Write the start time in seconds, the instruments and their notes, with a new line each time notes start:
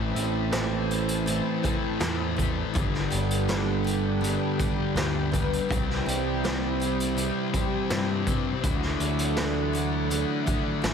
Already playing: picked electric bass A1, distorted electric guitar A2 E3 A3, twelve-string acoustic guitar E3, clean electric guitar C4 E4, string machine E4 C5 A5
0.15 picked electric bass A1, twelve-string acoustic guitar E4, closed hi-hat
0.52 distorted electric guitar A2 E3 A3, twelve-string acoustic guitar C4, snare, closed hi-hat
0.91 twelve-string acoustic guitar E3, closed hi-hat
1.09 closed hi-hat
1.26 distorted electric guitar A2 E3 A3, twelve-string acoustic guitar C4, closed hi-hat
1.63 distorted electric guitar E3 A3, twelve-string acoustic guitar E4, kick, closed hi-hat
2.00 picked electric bass E2, distorted electric guitar A2 E3 A3, twelve-string acoustic guitar C4, snare, closed hi-hat
2.36 twelve-string acoustic guitar E3, distorted electric guitar E3 A3, kick, closed hi-hat
2.74 picked electric bass G1, distorted electric guitar G2 D3 G3, twelve-string acoustic guitar G3, clean electric guitar B3 D4, string machine D4 B4 G5, kick, closed hi-hat
2.94 snare
3.10 picked electric bass G1, twelve-string acoustic guitar G4, closed hi-hat
3.31 closed hi-hat
3.48 distorted electric guitar G2 D3 G3, twelve-string acoustic guitar D4, snare, closed hi-hat
3.84 twelve-string acoustic guitar G3, closed hi-hat
4.21 distorted electric guitar G2 D3 G3, twelve-string acoustic guitar D4, closed hi-hat
4.58 distorted electric guitar D3 G3, twelve-string acoustic guitar G4, kick, closed hi-hat
4.95 picked electric bass D2, distorted electric guitar G2 D3 G3, twelve-string acoustic guitar D4, snare, closed hi-hat
5.32 distorted electric guitar D3 G3, twelve-string acoustic guitar B3, kick, closed hi-hat
5.53 closed hi-hat
5.68 picked electric bass C2, distorted electric guitar C3 G3 C4, string machine E4 C5, kick, closed hi-hat
5.73 clean electric guitar E4
5.90 snare
6.06 picked electric bass C2, twelve-string acoustic guitar G4, closed hi-hat
6.43 distorted electric guitar C3 G3 C4, twelve-string acoustic guitar E4, snare, closed hi-hat
6.80 twelve-string acoustic guitar E3, closed hi-hat
7.00 closed hi-hat
7.16 distorted electric guitar C3 G3 C4, twelve-string acoustic guitar E4, closed hi-hat
7.53 distorted electric guitar G3 C4, twelve-string acoustic guitar G4, kick, closed hi-hat
7.90 picked electric bass G2, distorted electric guitar C3 G3 C4, twelve-string acoustic guitar E4, snare, closed hi-hat
8.27 distorted electric guitar G3 C4, twelve-string acoustic guitar C4, kick, closed hi-hat
8.63 picked electric bass D2, distorted electric guitar D3 A3 D4, clean electric guitar F#3 E4, twelve-string acoustic guitar F#3, string machine D5 F#5, kick, closed hi-hat
8.82 snare
9.00 picked electric bass D2, twelve-string acoustic guitar E4, closed hi-hat
9.19 closed hi-hat
9.36 distorted electric guitar D3 A3 D4, twelve-string acoustic guitar A3, snare, closed hi-hat
9.73 twelve-string acoustic guitar F#3, closed hi-hat
10.09 distorted electric guitar D3 A3 D4, twelve-string acoustic guitar A3, closed hi-hat
10.46 distorted electric guitar A3 D4, twelve-string acoustic guitar E4, kick, closed hi-hat
10.82 picked electric bass A1, distorted electric guitar D3 A3 D4, twelve-string acoustic guitar A3, snare, closed hi-hat